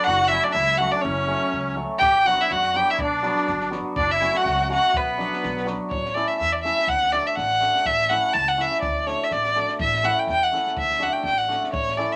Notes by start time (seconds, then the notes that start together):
Already playing: D3 F#3
0.04 F#1 F#4 F#5
0.27 F#3 A3 C#4 E4 E5
0.32 F#4
0.43 D4 D5
0.53 C#2 E4 E5
0.77 F#3 A3 C#4 F#4 F#5
0.81 F#4
0.90 D4 D5
1.01 C#4 C#5
1.05 F#1
1.27 F#3 A3 C#4 F#4
1.53 C#2
1.76 F#3 A3 C#4 F#4
1.99 B1 G4 G5, kick
2.25 F#3 B3 D4 F#4 F#5, snare
2.39 E4 E5, snare
2.49 F#2 F#4 F#5, snare
2.62 snare
2.74 F#3 B3 D4 F#4 G4 G5, snare
2.90 E4 E5
2.99 B1 D4 D5, kick
3.23 F#3 B3 D4 F#4, snare
3.36 snare
3.47 G1, snare
3.60 snare
3.71 F#3 B3 D4 F#4, snare
3.96 F#1 D4 D5, kick
4.11 E4 E5
4.20 F#3 A3 C#4 F#4, snare
4.35 F#4 F#5, snare
4.45 C#2, snare
4.60 snare
4.69 F#3 A3 C#4 F#4 F#5, snare
4.94 B1 B3 B4, kick
5.18 F#3 B3 D4 F#4, snare
5.33 snare
5.44 B1, snare
5.57 snare
5.65 F#3 B3 D4 F#4, snare
5.91 A1 C#5, kick
6.05 snare
6.14 A3 C#4 E4 A4 D5, snare
6.28 E5
6.38 E2 E5, snare
6.52 D5
6.63 A3 C#4 E4 A4 E5, snare
6.79 snare
6.88 D2 F#5, kick
7.03 snare
7.12 A3 D4 F#4 A4 D5, snare
7.26 E5
7.35 A1 F#5, snare
7.60 A3 D4 F#4 A4, snare
7.75 snare
7.85 A1 E5, kick
7.99 snare
8.09 A3 C#4 E4 A4 F#5, snare
8.34 C#2 A5, snare
8.48 F#5
8.57 A3 C#4 E4 A4 E5, snare
8.71 snare
8.82 D2 D5, kick
9.06 A3 D4 F#4 A4 C#5, snare
9.24 E5
9.31 A1 D5, snare
9.45 snare
9.55 A3 D4 F#4 A4, snare
9.69 snare
9.79 A1 E5, kick
9.94 snare
10.03 A3 C#4 E4 A4 F#5, snare
10.19 G5
10.27 E2 G5, snare
10.43 F#5
10.52 A3 C#4 E4 A4, snare
10.67 snare
10.77 D2 E5, kick
10.91 snare
10.99 A3 D4 F#4 A4 F#5, snare
11.13 G5
11.23 A1 G5, snare
11.38 F#5
11.48 A3 D4 F#4 A4, snare
11.64 snare
11.73 A1 C#5, kick
11.89 snare
11.97 A3 C#4 E4 A4 D5, snare
12.12 E5